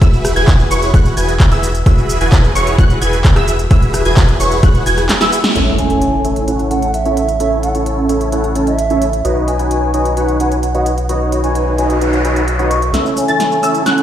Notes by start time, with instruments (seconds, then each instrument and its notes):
0.01 sub bass E1, supersaw synth E4 F#4 G#4 B4 E5, synth pluck E6, kick, closed hi-hat, cabasa
0.13 cabasa
0.25 cross-stick, open hi-hat, cabasa
0.36 sub bass E1, supersaw synth E4 F#4 G#4 B4 G#5, synth pluck G#6, closed hi-hat, cabasa
0.48 kick, clap, closed hi-hat, cabasa
0.60 cabasa
0.71 sub bass E1, supersaw synth E4 F#4 G#4 B4 C#5, synth pluck C#6, open hi-hat, cabasa
0.82 closed hi-hat, cabasa
0.94 sub bass E1, supersaw synth E4 F#4 G#4 B4 F#5, synth pluck F#6, kick, closed hi-hat, cabasa
1.05 closed hi-hat, cabasa
1.17 sub bass E1, supersaw synth E4 F#4 G#4 B4 G#5, synth pluck G#6, open hi-hat, cabasa
1.29 closed hi-hat, cabasa
1.40 kick, clap, closed hi-hat, cabasa
1.51 sub bass E1, supersaw synth E4 F#4 G#4 B4 E5, synth pluck E6, closed hi-hat, cabasa
1.63 open hi-hat, cabasa
1.75 closed hi-hat, cabasa
1.86 sub bass E1, supersaw synth E4 F#4 G#4 B4 E5, synth pluck E6, kick, closed hi-hat, cabasa
1.98 cabasa
2.09 open hi-hat, cabasa
2.21 sub bass E1, supersaw synth E4 F#4 G#4 B4 G#5, synth pluck G#6, closed hi-hat, cabasa
2.32 kick, clap, closed hi-hat, cabasa
2.44 cabasa
2.55 sub bass E1, supersaw synth E4 F#4 G#4 B4 C#5, synth pluck C#6, open hi-hat, cabasa
2.67 closed hi-hat, cabasa
2.78 sub bass E1, supersaw synth E4 F#4 G#4 B4 F#5, synth pluck F#6, kick, closed hi-hat, cabasa
2.90 closed hi-hat, cabasa
3.01 sub bass E1, supersaw synth E4 F#4 G#4 B4 G#5, synth pluck G#6, open hi-hat, cabasa
3.13 closed hi-hat, cabasa
3.24 kick, clap, closed hi-hat, cabasa
3.36 sub bass E1, supersaw synth E4 F#4 G#4 B4 E5, synth pluck E6, cross-stick, closed hi-hat, cabasa
3.48 open hi-hat, cabasa
3.59 closed hi-hat, cabasa
3.71 sub bass E1, supersaw synth E4 F#4 G#4 B4 E5, synth pluck E6, kick, closed hi-hat, cabasa
3.82 closed hi-hat, cabasa
3.94 cross-stick, open hi-hat, cabasa
4.05 sub bass E1, supersaw synth E4 F#4 G#4 B4 G#5, synth pluck G#6, closed hi-hat, cabasa
4.17 kick, clap, closed hi-hat, cabasa
4.28 closed hi-hat, cabasa
4.40 sub bass E1, supersaw synth E4 F#4 G#4 B4 C#5, synth pluck C#6, open hi-hat, cabasa
4.52 closed hi-hat, cabasa
4.63 sub bass E1, supersaw synth E4 F#4 G#4 F#5, synth pluck F#6, kick, closed hi-hat, cabasa
4.75 closed hi-hat, cabasa
4.86 sub bass E1, supersaw synth E4 F#4 G#4 B4 G#5, synth pluck G#6, open hi-hat, cabasa
4.98 cross-stick, closed hi-hat, cabasa
5.09 snare, clap, closed hi-hat, cabasa
5.21 supersaw synth E4 F#4 G#4 B4 E5, synth pluck E6, snare, closed hi-hat, cabasa
5.32 open hi-hat, cabasa
5.44 snare, closed hi-hat, cabasa
5.55 sub bass A1, supersaw synth C#4 E4 A4 C#5 E5, closed hi-hat, impact
5.78 flute G#5, closed hi-hat
5.90 supersaw synth C#4 E4 A4 C#5 A5, closed hi-hat
6.02 closed hi-hat
6.25 supersaw synth C#4 E4 A4 C#5 E5, closed hi-hat
6.36 closed hi-hat
6.48 supersaw synth C#4 E4 A4 C#5 F#5, closed hi-hat
6.59 closed hi-hat
6.70 supersaw synth C#4 E4 A4 C#5 A5, flute F#5, closed hi-hat
6.82 closed hi-hat
6.94 flute E5, closed hi-hat
7.05 supersaw synth C#4 E4 A4 C#5 E5, closed hi-hat
7.17 closed hi-hat
7.29 closed hi-hat
7.40 supersaw synth C#4 E4 A4 C#5 E5, closed hi-hat
7.63 flute F#5, closed hi-hat
7.75 supersaw synth C#4 E4 A4 C#5 A5, closed hi-hat
7.86 closed hi-hat
8.09 supersaw synth C#4 E4 A4 C#5 E5, closed hi-hat
8.21 closed hi-hat
8.32 supersaw synth C#4 E4 A4 C#5 F#5, closed hi-hat
8.44 closed hi-hat
8.55 supersaw synth C#4 E4 A4 C#5 A5, closed hi-hat
8.67 flute E5, closed hi-hat
8.79 closed hi-hat
8.90 supersaw synth C#4 E4 A4 C#5 E5, closed hi-hat
9.02 closed hi-hat
9.13 closed hi-hat
9.25 sub bass B1, supersaw synth D#4 F#4 B4 C#5 D#5, closed hi-hat
9.48 flute G#5, closed hi-hat
9.59 supersaw synth D#4 F#4 B4 C#5 G#5, closed hi-hat
9.71 closed hi-hat
9.94 supersaw synth D#4 F#4 B4 C#5 D#5, closed hi-hat
10.05 closed hi-hat
10.17 supersaw synth D#4 F#4 B4 C#5 F#5, closed hi-hat
10.28 closed hi-hat
10.40 supersaw synth D#4 F#4 B4 C#5 G#5, flute F#5, closed hi-hat
10.52 closed hi-hat
10.63 closed hi-hat
10.74 supersaw synth D#4 F#4 B4 C#5 D#5, flute F#5, closed hi-hat
10.86 closed hi-hat
10.98 closed hi-hat
11.09 supersaw synth D#4 F#4 B4 C#5 D#5, closed hi-hat, noise sweep
11.32 closed hi-hat
11.44 supersaw synth D#4 F#4 B4 C#5 G#5, flute G#5, closed hi-hat
11.55 closed hi-hat
11.78 supersaw synth D#4 F#4 B4 C#5 D#5, flute G#5, closed hi-hat
11.90 flute G#5, closed hi-hat
12.01 supersaw synth D#4 F#4 B4 C#5 F#5, closed hi-hat
12.13 closed hi-hat
12.24 supersaw synth D#4 F#4 B4 C#5 G#5, closed hi-hat
12.36 closed hi-hat
12.48 closed hi-hat
12.59 supersaw synth D#4 F#4 B4 C#5 D#5, closed hi-hat
12.71 flute C#6, closed hi-hat
12.82 closed hi-hat
12.94 sub bass A1, supersaw synth C#4 E4 A4 C#5 E5, synth pluck E6, snare, closed hi-hat, riser, cabasa
13.06 cabasa
13.17 flute G#5, open hi-hat, cabasa
13.28 sub bass A1, supersaw synth C#4 E4 A4 C#5 A5, synth pluck A6, closed hi-hat, cabasa
13.40 snare, closed hi-hat, cabasa
13.52 cabasa
13.63 sub bass A1, supersaw synth C#4 E4 A4 C#5 E5, synth pluck E6, open hi-hat, cabasa
13.75 closed hi-hat, cabasa
13.86 sub bass A1, supersaw synth C#4 E4 A4 C#5 F#5, synth pluck F#6, snare, closed hi-hat, cabasa
13.98 closed hi-hat